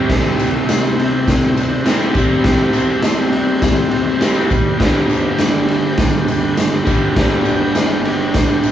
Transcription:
Already playing: C3 G3 C4 G4 C5 E5
0.09 kick, snare, crash
0.39 ride, tambourine
0.69 snare, ride, tambourine
0.99 ride
1.28 kick, snare, ride, tambourine
1.57 ride, tambourine
1.84 C3 G3, snare, ride, tambourine
1.90 C4
2.14 C3 G3, kick, ride, tambourine
2.19 C4
2.44 kick, snare, ride
2.73 ride, tambourine
3.02 snare, ride, tambourine
3.33 ride
3.62 kick, snare, ride, tambourine
3.91 ride
4.19 C3 G3, snare, ride, tambourine
4.25 C4
4.50 kick, ride, tambourine
4.78 G2 D3 G4 B4, kick, snare, ride
4.82 G3 D5
5.10 ride, tambourine
5.38 snare, ride, tambourine
5.68 ride
5.98 kick, snare, ride, tambourine
6.28 ride, tambourine
6.57 snare, ride, tambourine
6.85 D3 G3, kick, ride, tambourine
6.90 G2
7.14 G2 D3, kick, snare, ride
7.19 G3
7.45 ride, tambourine
7.75 snare, ride, tambourine
8.05 ride, tambourine
8.34 kick, snare, ride, tambourine
8.63 B5, ride, tambourine

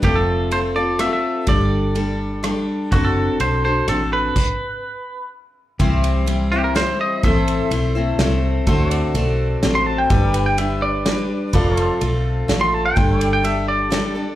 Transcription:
0.02 F1 F3 A3 C4 F4 G4 A4, kick, ride
0.16 A4
0.51 A3 C4 F4 A4 C5, ride
0.75 C4 F4 A4 D5
0.99 A3 C4 F4 A4 E5, cross-stick, ride
1.13 E5
1.47 G1 G3 D4 G4 A4 D5, kick, ride
1.95 G3 D4 G4 A4, ride
2.43 G3 D4 G4 A4, cross-stick, ride
2.92 F#1 F#3 C4 D4 F#4 A4, kick, ride
3.05 A4
3.40 B1 C4 D4 F#4 A4 C5, ride
3.64 D4 F#4 A4 C5
3.88 A1 C4 D4 F#4 A4, cross-stick, ride
4.13 B4
4.36 kick, crash
5.79 C2 C3 E3 G3 C4 E4 G4 C5, kick, ride
6.04 ride
6.26 G3 C4 E4 C5, ride
6.52 G3 C4 E4 G4 C5
6.64 A#4
6.75 G3 C4 E4 C5, snare, ride
7.01 D#5
7.23 A1 A2 E3 A3 C4 E4 A4 C5 E5, kick, ride
7.48 ride
7.71 B1 A3 C4 E4 C5, ride
7.95 A3 C4 E4 C5
8.19 C2 A3 C4 E4 C5, snare, ride
8.66 D2 D3 A3 C4 F#4 A4 C5, kick, ride
8.91 D5, ride
9.14 B1 A3 C4 F#4 C5, ride
9.63 A1 A3 C4 F#4 C5, snare, ride
9.75 C6
9.86 A5
9.98 G5
10.10 G1 G3 D4 G4 A4 B4 D5, kick, ride
10.34 B4, ride
10.46 G5
10.57 G3 D4 G4 B4 E5, ride
10.82 D5
11.06 G3 D4 G4 B4, snare, ride
11.53 F1 F3 A3 C4 F4 A4 B4 D5, kick, ride
11.77 A4 C5, ride
12.01 B1 A3 C4 F4 A4, ride
12.48 A1 A3 C4 F4 A4, snare, ride
12.61 C6
12.74 A5
12.86 G5
12.96 G1 G3 D4 G4 A4 C5, kick, ride
13.21 D5, ride
13.33 G5
13.43 G3 D4 G4 A4 E5, ride
13.68 D5
13.90 G3 D4 G4 A4, snare, ride
14.15 D4 G4 A4

